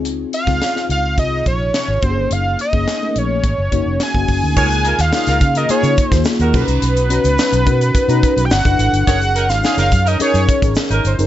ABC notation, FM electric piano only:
X:1
M:4/4
L:1/16
Q:1/4=106
K:Db
V:1 name="FM electric piano"
[CEFA]2 z [CEFA] z [CEFA]2 z [C,EFA]4 z2 [B,DEGA]2- | [B,DEGA]2 z [B,DEA] z [=A,B,DE_A]3 z2 [B,DEG]2 z [B,DEG]2 z | [B,EFA]2 z2 [B,EFA]2 z2 [B,EFA]2 z [B,EFA]2 z [DEGAb]2- | [DEGAb] z [DEGb]2 z2 [DEGB]2 z [DEGb]2 z2 [=D=E=A=B]2 z |
[DEAB]2 z2 [DEAd]2 z2 [DEAB]2 z [DEAB]2 z2 [DEAB] |]